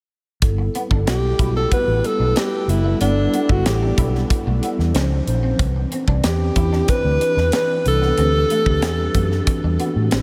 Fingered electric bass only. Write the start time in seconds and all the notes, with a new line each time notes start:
0.42 G1
0.91 G1
1.07 B1
1.39 B1
1.88 A1
2.19 B1
2.68 F#1
3.01 G1
3.50 G1
3.65 A1
3.98 B1
4.47 B1
4.79 E2
4.95 C#2
5.27 A#1
5.59 C2
6.08 C2
6.24 E2
6.56 E2
7.04 D2
7.37 E2
7.86 C2
8.18 D2
8.66 D2
8.82 E2
9.15 F#2
9.64 E2
9.96 A2
10.12 A1